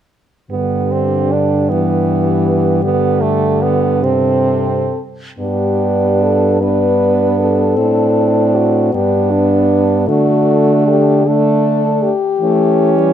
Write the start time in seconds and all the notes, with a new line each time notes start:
0.51 G2 D3 B3 G4
0.91 C4
1.32 D4
1.69 E3 B3
2.84 D3 B3
3.21 A3
3.62 B3
4.02 C3 C4 A4
5.39 G2 B3 D4 G4
6.23 A4
6.61 B3 D4 B4
7.39 A4
7.76 A2 C4 D4
8.55 F#4
8.93 G2 B3 D4 G4
9.31 D4
10.08 D3 A3 D4 F#4
10.87 G4
11.26 A3 D4 A4
12.03 G4
12.40 E3 A3 C#4
12.98 G3